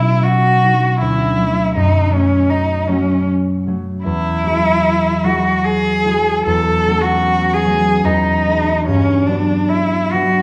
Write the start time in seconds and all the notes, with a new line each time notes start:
Already playing: B2 F#3 B3 C#4 D#4 E4
0.23 F#4
0.63 F#3 C#4 D#4
1.01 D2 E4
1.37 F#3 A3 F#4
1.43 C#4
1.75 F#2 D#4
2.11 F#3 A3 C#4
2.15 C#4 F#4
2.50 D#4
2.87 F#3 A3 C#4
2.92 F#4
3.67 F#3 A3 C#4 F#4
4.04 E2 E4
4.43 F#3 G#3 E4 F#4
5.24 F#3 G#3 E4 F#4
5.65 G#4
6.05 F#3 G#3 E4 F#4
6.46 E2 A4
6.87 F#3 A3 C#4 F#4
7.01 F#4
7.53 G#4
7.65 F#3 A3 C#4 F#4
8.05 E2 D#4
8.47 G#3 B3 C#4 F#4
8.86 G2 C#4
9.27 F#3 B3 D4 F#4
9.69 E4
10.12 F#3 B3 D4 F#4